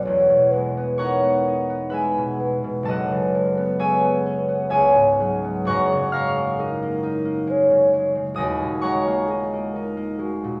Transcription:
0.00 0.76 B3 soft
0.00 1.89 B4 medium
0.00 0.52 C#5 medium
0.00 1.90 E5 medium
0.05 2.90 E1 medium
0.05 2.91 E2 medium
0.30 2.16 B2 soft
0.51 1.92 G#3 medium
0.51 0.99 B4 medium
0.77 1.22 B3 medium
0.98 1.46 D#4 medium
0.98 1.64 A#4 medium
0.98 3.78 C#5 medium
0.98 2.85 F#5 medium
0.98 2.90 A#5 medium
0.98 2.58 C#6 loud
1.23 1.69 B3 medium
1.47 2.91 D#4 medium
1.70 3.56 B3 soft
1.90 2.38 G#3 soft
1.90 2.41 G#4 medium
1.90 5.71 B4 medium
1.90 3.79 E5 medium
1.90 3.78 G#5 medium
1.90 5.71 B5 medium
2.17 2.63 B2 medium
2.40 3.33 G#3 soft
2.40 4.71 B4 medium
2.64 2.90 B2 soft
2.83 4.75 F#1 medium
2.83 4.75 A4 medium
2.83 4.74 A5 loud
2.88 4.76 F#2 medium
2.88 6.78 D#5 medium
2.88 5.66 F#5 medium
3.11 4.76 C#3 medium
3.35 6.13 G#3 medium
3.57 4.03 B3 medium
3.79 4.25 C#4 medium
3.79 4.70 G#4 medium
3.79 4.70 C#5 medium
3.79 4.69 E5 medium
3.79 4.69 G#5 loud
4.04 4.47 B3 medium
4.26 8.16 C#4 medium
4.48 5.43 B3 medium
4.69 5.72 C#2 medium
4.69 8.61 G#4 medium
4.69 5.17 C#5 medium
4.69 5.65 C#5 medium
4.69 5.72 E5 medium
4.69 8.35 G#5 loud
4.95 5.72 G#2 medium
5.18 9.10 F#3 medium
5.18 6.60 G#4 medium
5.44 5.72 B3 soft
5.65 8.42 F#1 medium
5.65 8.43 F#2 medium
5.65 8.82 C#5 medium
5.65 8.82 F#5 medium
5.65 6.12 C#6 loud
5.69 6.12 A#5 medium
5.92 7.69 C#3 soft
6.12 7.46 G#3 medium
6.12 10.02 F5 medium
6.12 8.81 A#5 medium
6.12 8.80 C#6 medium
6.12 9.95 F6 loud
6.38 6.81 A#3 medium
6.59 7.02 D#4 medium
6.59 7.51 A#4 medium
6.82 7.24 A#3 medium
7.03 9.29 D#4 medium
7.25 9.06 A#3 medium
7.47 7.92 G#3 medium
7.47 8.12 C#5 medium
7.70 8.14 C#3 medium
7.93 8.83 G#3 medium
8.15 8.42 C#3 medium
8.34 10.60 D#1 medium
8.34 10.60 D#2 medium
8.34 9.29 F#4 medium
8.34 10.60 D#5 medium
8.34 10.60 G#5 medium
8.34 10.60 D#6 medium
8.40 10.60 B5 medium
8.62 10.43 A#2 medium
8.81 10.18 G#3 medium
8.81 10.60 C#5 medium
8.81 10.60 F#5 medium
8.81 10.60 A#5 medium
8.81 10.60 C#6 loud
9.08 9.52 A#3 medium
9.28 9.74 D#4 medium
9.28 9.74 G#4 medium
9.53 9.96 A#3 medium
9.73 10.60 D#4 medium
9.73 10.20 A#4 medium
9.97 10.60 A#3 medium
10.19 10.60 G#3 medium
10.19 10.60 F#4 medium
10.44 10.60 A#2 medium

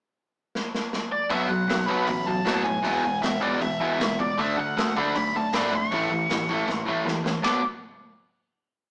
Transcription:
0.55 snare medium
0.75 snare medium
0.93 snare medium
1.12 1.32 D5 medium
1.30 1.46 B1 medium
1.30 1.48 B2 medium
1.30 1.49 F#3 medium
1.30 1.49 B3 loud
1.30 1.48 E5 medium
1.30 kick loud
1.30 open hi-hat medium
1.48 1.65 B1 medium
1.48 1.67 B2 medium
1.48 1.67 F#3 medium
1.48 1.89 F#5 medium
1.67 1.84 B1 medium
1.67 1.87 B2 medium
1.67 1.87 F#3 medium
1.67 snare loud
1.67 open hi-hat medium
1.86 2.04 B1 medium
1.86 2.07 B2 medium
1.86 2.07 F#3 loud
1.86 2.07 B3 loud
1.86 2.05 B5 medium
1.86 kick medium
2.06 2.40 A1 medium
2.06 2.25 B2 medium
2.06 2.25 F#3 medium
2.06 2.26 B5 medium
2.06 kick loud
2.06 open hi-hat medium
2.26 2.43 B2 medium
2.26 2.44 F#3 medium
2.26 2.66 A5 loud
2.45 2.77 A2 medium
2.45 2.63 B2 loud
2.45 2.64 F#3 loud
2.45 2.64 B3 loud
2.45 snare loud
2.45 open hi-hat medium
2.63 2.82 B2 medium
2.63 2.83 F#3 medium
2.63 3.03 G#5 medium
2.63 kick medium
2.82 3.01 E1 medium
2.82 3.03 E2 medium
2.82 3.03 B2 loud
2.82 3.02 E3 medium
2.82 3.02 G#3 medium
2.82 3.02 B3 loud
2.82 kick loud
2.82 open hi-hat medium
3.03 3.19 E1 medium
3.03 3.21 E2 medium
3.03 3.22 B2 medium
3.03 3.21 E3 medium
3.03 3.20 G#3 medium
3.03 3.22 G#5 medium
3.22 3.54 E1 medium
3.22 3.40 E2 medium
3.22 3.40 B2 medium
3.22 3.39 E3 medium
3.22 3.40 G#3 medium
3.22 3.42 E5 medium
3.22 snare loud
3.22 open hi-hat medium
3.41 3.60 E2 medium
3.41 3.60 B2 medium
3.41 3.60 E3 medium
3.41 3.60 G#3 medium
3.41 3.60 B3 medium
3.41 3.60 D5 medium
3.41 kick medium
3.61 3.77 E1 medium
3.61 3.79 E2 medium
3.61 3.79 B2 medium
3.61 3.79 E3 medium
3.61 3.79 G#3 medium
3.61 4.20 E5 medium
3.61 kick loud
3.61 open hi-hat medium
3.80 3.96 E1 medium
3.80 3.97 E2 medium
3.80 3.98 B2 loud
3.80 3.99 E3 loud
3.80 3.99 G#3 medium
3.80 3.99 B3 loud
3.98 4.31 C#2 medium
3.98 4.16 E2 medium
3.98 4.17 B2 medium
3.98 4.18 E3 medium
3.98 4.18 G#3 medium
3.98 snare loud
3.98 open hi-hat medium
4.19 4.36 E2 medium
4.19 4.37 B2 medium
4.19 4.37 E3 medium
4.19 4.37 G#3 medium
4.19 4.40 D5 medium
4.19 kick medium
4.38 4.55 D2 medium
4.38 4.56 D3 medium
4.38 4.56 A3 medium
4.38 4.57 D4 medium
4.38 4.59 E5 medium
4.38 kick loud
4.38 open hi-hat medium
4.57 4.74 D2 medium
4.57 4.75 D3 medium
4.57 4.75 A3 medium
4.57 4.97 F#5 loud
4.77 4.93 D2 medium
4.77 4.95 D3 medium
4.77 4.95 A3 medium
4.77 snare loud
4.77 open hi-hat medium
4.96 5.12 D2 medium
4.96 5.14 D3 medium
4.96 5.14 A3 loud
4.96 5.14 D4 medium
4.96 5.15 B5 loud
4.96 kick medium
5.15 5.46 B1 medium
5.15 5.33 D3 medium
5.15 5.33 A3 medium
5.15 5.35 B5 loud
5.15 kick loud
5.15 open hi-hat medium
5.35 5.52 D3 medium
5.35 5.52 A3 medium
5.35 5.53 A5 loud
5.53 5.84 G#1 medium
5.53 5.71 D3 loud
5.53 5.71 A3 loud
5.53 5.71 D4 loud
5.53 5.75 B5 loud
5.53 snare loud
5.53 open hi-hat medium
5.73 5.90 D3 medium
5.73 5.90 A3 medium
5.73 7.07 C#6 loud
5.73 kick medium
5.91 6.07 A1 medium
5.91 6.09 A2 medium
5.91 6.09 E3 medium
5.91 6.10 A3 medium
5.91 kick loud
5.91 open hi-hat medium
6.10 6.26 A1 medium
6.10 6.27 A2 medium
6.10 6.27 E3 medium
6.29 6.61 A1 medium
6.29 6.47 A2 medium
6.29 6.47 E3 medium
6.29 snare loud
6.29 open hi-hat medium
6.49 6.65 A2 medium
6.49 6.66 E3 medium
6.49 6.67 A3 medium
6.49 kick medium
6.66 6.83 A1 medium
6.66 6.84 A2 medium
6.66 6.84 E3 medium
6.66 kick loud
6.66 snare medium
6.85 7.03 A1 medium
6.85 7.04 A2 medium
6.85 7.04 E3 medium
6.85 7.04 A3 loud
7.05 7.37 A1 medium
7.05 7.23 A2 medium
7.05 7.23 E3 medium
7.05 snare medium
7.24 7.42 A2 medium
7.24 7.42 E3 medium
7.24 snare medium
7.42 7.62 B1 medium
7.42 7.58 B2 medium
7.42 7.59 F#3 loud
7.42 7.59 B3 loud
7.42 7.59 D4 loud
7.42 7.62 D6 medium
7.42 kick loud
7.42 snare medium
7.42 ride bell medium
7.47 7.61 B3 loud

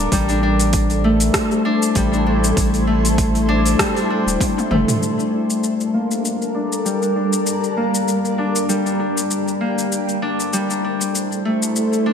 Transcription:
0.00 0.11 G3 medium
0.00 1.10 A#3 medium
0.00 0.29 D4 loud
0.12 1.31 A1 loud
0.12 1.95 G3 medium
0.12 4.98 A3 medium
0.12 4.98 E4 medium
0.12 4.98 A4 medium
0.12 4.98 C5 medium
0.12 kick loud
0.12 open hi-hat medium
0.12 shaker medium
0.29 0.42 D4 medium
0.29 open hi-hat soft
0.29 shaker soft
0.43 1.65 D4 medium
0.59 open hi-hat soft
0.59 shaker medium
0.73 kick loud
0.73 open hi-hat medium
0.73 shaker medium
0.90 open hi-hat soft
0.90 shaker soft
1.04 2.87 A3 medium
1.20 open hi-hat soft
1.20 shaker medium
1.34 kick medium
1.34 cross-stick medium
1.34 open hi-hat medium
1.34 shaker medium
1.51 shaker soft
1.65 2.13 D4 loud
1.82 shaker medium
1.95 2.53 A1 medium
1.95 3.79 G3 medium
1.95 kick loud
1.95 open hi-hat medium
1.95 shaker medium
2.13 2.26 D4 medium
2.13 shaker soft
2.26 3.48 D4 medium
2.44 shaker medium
2.57 3.76 A1 loud
2.57 kick loud
2.57 open hi-hat medium
2.57 shaker medium
2.74 open hi-hat soft
2.74 shaker soft
2.87 4.71 A3 medium
3.05 open hi-hat soft
3.05 shaker medium
3.18 kick loud
3.18 open hi-hat medium
3.18 shaker medium
3.35 open hi-hat soft
3.35 shaker soft
3.49 3.96 D4 loud
3.66 open hi-hat soft
3.66 shaker medium
3.79 5.00 G3 medium
3.79 kick loud
3.79 cross-stick medium
3.79 open hi-hat medium
3.79 shaker medium
3.97 4.10 D4 medium
3.97 open hi-hat soft
3.97 shaker soft
4.10 5.18 D4 medium
4.27 4.38 D#1 medium
4.27 shaker medium
4.41 kick loud
4.41 open hi-hat medium
4.41 high tom medium
4.41 shaker medium
4.58 high tom medium
4.58 shaker soft
4.71 4.85 G1 loud
4.71 6.00 A3 medium
4.71 mid tom medium
4.88 mid tom medium
4.88 open hi-hat soft
4.88 shaker medium
5.01 6.84 G3 medium
5.01 9.87 G3 medium
5.01 9.88 D4 medium
5.01 7.44 A4 medium
5.01 9.88 A#4 medium
5.01 shaker soft
5.18 5.32 D4 medium
5.18 shaker soft
5.33 6.54 D4 medium
5.50 shaker soft
5.64 shaker soft
5.81 shaker soft
5.94 7.77 A#3 medium
6.11 shaker medium
6.25 shaker soft
6.42 shaker soft
6.54 7.02 D4 medium
6.72 shaker medium
6.85 8.68 G3 medium
6.85 shaker soft
7.02 7.15 D4 medium
7.02 shaker soft
7.16 8.38 D4 medium
7.33 shaker medium
7.46 9.89 G4 medium
7.46 shaker medium
7.64 shaker soft
7.77 9.60 A#3 medium
7.95 shaker medium
8.08 shaker soft
8.25 shaker soft
8.38 8.85 D4 medium
8.56 shaker medium
8.69 9.97 G3 medium
8.69 shaker soft
8.86 8.99 D4 medium
8.86 shaker soft
9.00 10.22 D4 medium
9.17 shaker medium
9.31 shaker medium
9.48 shaker soft
9.61 11.51 A#3 medium
9.78 shaker medium
9.92 12.13 A3 medium
9.92 12.13 E4 medium
9.92 12.13 A4 medium
9.92 12.13 C5 medium
9.92 shaker medium
10.09 shaker soft
10.22 10.70 D4 medium
10.40 shaker medium
10.53 12.13 G3 medium
10.53 shaker medium
10.70 10.84 D4 medium
10.70 shaker soft
10.84 12.06 D4 medium
11.01 shaker medium
11.15 shaker medium
11.32 shaker soft
11.45 12.13 A3 medium
11.62 shaker medium
11.76 shaker medium
11.93 shaker soft
12.06 12.13 D4 medium

